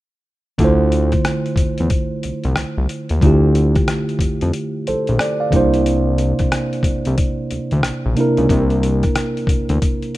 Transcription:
0.58 1.13 D2 medium
0.58 3.18 D3 medium
0.58 3.19 A3 medium
0.58 3.19 E4 medium
0.58 kick medium
0.58 closed hi-hat medium
0.62 3.20 F4 medium
0.62 3.21 C5 medium
0.92 closed hi-hat medium
1.12 kick medium
1.12 cross-stick soft
1.12 closed hi-hat soft
1.25 cross-stick medium
1.25 closed hi-hat medium
1.46 closed hi-hat soft
1.56 1.65 E2 soft
1.56 kick medium
1.56 closed hi-hat medium
1.78 1.89 E2 medium
1.78 closed hi-hat soft
1.90 kick medium
1.90 closed hi-hat medium
2.23 2.33 C2 soft
2.23 closed hi-hat medium
2.44 2.54 C2 medium
2.44 closed hi-hat soft
2.56 2.65 C2 soft
2.56 cross-stick medium
2.56 closed hi-hat medium
2.78 2.87 C2 medium
2.89 closed hi-hat medium
3.09 3.20 D#2 medium
3.09 closed hi-hat soft
3.21 3.76 D2 loud
3.21 4.83 D3 medium
3.21 4.83 A3 medium
3.21 4.84 E4 medium
3.21 4.85 F4 medium
3.21 kick medium
3.21 closed hi-hat medium
3.26 4.86 G4 medium
3.55 closed hi-hat medium
3.75 kick medium
3.75 cross-stick soft
3.75 closed hi-hat soft
3.88 cross-stick medium
3.88 closed hi-hat medium
4.09 closed hi-hat soft
4.19 4.28 F2 soft
4.19 kick medium
4.19 closed hi-hat medium
4.41 4.52 F2 medium
4.41 closed hi-hat soft
4.53 closed hi-hat medium
4.87 4.96 A#1 soft
4.87 5.19 A4 soft
4.87 5.18 C5 soft
4.87 closed hi-hat medium
5.07 5.18 A#1 medium
5.07 closed hi-hat soft
5.19 5.39 D5 medium
5.19 cross-stick medium
5.19 closed hi-hat medium
5.40 5.72 D5 soft
5.40 5.71 F5 soft
5.51 6.34 C2 medium
5.51 8.11 C3 medium
5.51 8.12 A#3 medium
5.51 8.13 D4 medium
5.51 kick medium
5.51 closed hi-hat medium
5.55 8.13 E4 medium
5.55 8.14 C5 medium
5.74 closed hi-hat soft
5.86 closed hi-hat medium
6.18 closed hi-hat medium
6.39 kick medium
6.39 cross-stick soft
6.39 closed hi-hat soft
6.52 cross-stick medium
6.52 closed hi-hat medium
6.73 closed hi-hat soft
6.83 6.92 C2 soft
6.83 kick medium
6.83 closed hi-hat medium
7.05 7.16 C2 medium
7.05 closed hi-hat soft
7.18 kick medium
7.18 closed hi-hat medium
7.51 7.60 D2 soft
7.51 closed hi-hat medium
7.71 7.82 D2 medium
7.71 closed hi-hat soft
7.83 7.92 A#1 soft
7.83 cross-stick medium
7.83 closed hi-hat medium
8.06 8.15 A#1 medium
8.15 10.17 C3 medium
8.15 10.17 A#3 medium
8.15 10.17 D4 medium
8.15 10.17 E4 medium
8.15 closed hi-hat medium
8.21 10.12 A#4 medium
8.37 8.48 C#2 medium
8.37 closed hi-hat soft
8.49 9.04 C2 loud
8.49 kick medium
8.49 closed hi-hat medium
8.70 closed hi-hat soft
8.83 closed hi-hat medium
9.03 kick medium
9.03 cross-stick soft
9.03 closed hi-hat soft
9.15 cross-stick medium
9.15 closed hi-hat medium
9.37 closed hi-hat soft
9.47 9.56 D2 soft
9.47 kick medium
9.47 closed hi-hat medium
9.69 9.79 D2 medium
9.69 closed hi-hat soft
9.82 kick medium
9.82 closed hi-hat medium
10.02 closed hi-hat soft

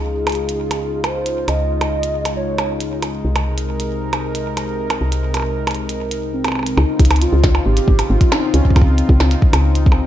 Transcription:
0.00 1.46 C#2 medium
0.00 3.21 C#3 medium
0.00 6.73 G#3 medium
0.00 6.74 D#4 medium
0.00 3.21 F4 medium
0.00 1.06 G#4 loud
0.27 closed hi-hat soft
0.27 percussion blips medium
0.30 closed hi-hat soft
0.32 closed hi-hat soft
0.35 closed hi-hat soft
0.49 closed hi-hat medium
0.71 closed hi-hat medium
0.71 percussion blips soft
1.04 1.50 C5 loud
1.04 closed hi-hat soft
1.04 percussion blips medium
1.26 closed hi-hat medium
1.48 3.22 C#2 medium
1.48 2.36 D#5 loud
1.48 closed hi-hat medium
1.48 percussion blips soft
1.81 closed hi-hat soft
1.81 percussion blips medium
2.03 closed hi-hat medium
2.25 closed hi-hat medium
2.25 percussion blips soft
2.36 2.99 C#5 loud
2.58 closed hi-hat soft
2.58 percussion blips medium
2.81 closed hi-hat medium
3.02 closed hi-hat medium
3.02 percussion blips soft
3.24 4.99 C2 medium
3.24 6.74 C3 medium
3.24 6.74 A#4 medium
3.36 closed hi-hat soft
3.36 percussion blips medium
3.58 closed hi-hat medium
3.80 closed hi-hat medium
4.13 closed hi-hat soft
4.13 percussion blips medium
4.35 closed hi-hat medium
4.57 closed hi-hat medium
4.57 percussion blips soft
4.90 closed hi-hat medium
4.90 percussion blips medium
5.01 6.75 C2 medium
5.12 closed hi-hat medium
5.34 closed hi-hat medium
5.34 percussion blips soft
5.37 percussion blips soft
5.40 percussion blips soft
5.42 percussion blips soft
5.67 closed hi-hat soft
5.67 percussion blips medium
5.71 closed hi-hat soft
5.75 closed hi-hat soft
5.89 closed hi-hat medium
6.11 closed hi-hat medium
6.33 6.79 C4 medium
6.44 closed hi-hat soft
6.44 percussion blips medium
6.48 percussion blips medium
6.52 percussion blips soft
6.55 percussion blips soft
6.59 percussion blips soft
6.63 closed hi-hat medium
6.63 percussion blips soft
6.77 6.84 C#2 loud
6.77 10.07 C#3 medium
6.77 10.07 C4 medium
6.77 10.07 D#4 medium
6.77 7.23 D#4 loud
6.77 10.07 F4 medium
6.77 percussion blips medium
6.99 7.26 C#2 medium
6.99 kick loud
6.99 closed hi-hat medium
7.05 closed hi-hat medium
7.11 closed hi-hat medium
7.11 percussion blips medium
7.16 closed hi-hat soft
7.22 7.67 F4 loud
7.22 closed hi-hat medium
7.33 7.59 C#2 loud
7.44 kick loud
7.44 snare loud
7.44 closed hi-hat medium
7.55 percussion blips medium
7.66 7.80 G#1 medium
7.66 8.11 G4 loud
7.77 closed hi-hat medium
7.88 8.02 G#1 medium
7.88 kick loud
7.99 closed hi-hat loud
7.99 percussion blips medium
8.10 8.17 G#1 loud
8.10 8.34 F4 loud
8.21 kick loud
8.21 closed hi-hat medium
8.32 8.54 D#4 loud
8.32 snare loud
8.32 percussion blips medium
8.54 8.61 C#2 loud
8.54 8.78 C#4 loud
8.54 closed hi-hat medium
8.65 kick medium
8.70 kick medium
8.76 9.03 C#2 medium
8.76 9.64 C4 medium
8.76 kick medium
8.76 closed hi-hat loud
8.76 percussion blips medium
8.81 kick loud
8.98 closed hi-hat medium
9.09 9.36 C#2 loud
9.09 kick loud
9.20 snare loud
9.20 percussion blips medium
9.31 closed hi-hat medium
9.42 kick loud
9.53 10.02 C#2 medium
9.53 closed hi-hat medium
9.53 percussion blips medium
9.75 closed hi-hat medium
9.86 10.07 C4 medium
9.86 kick loud
9.92 percussion blips medium

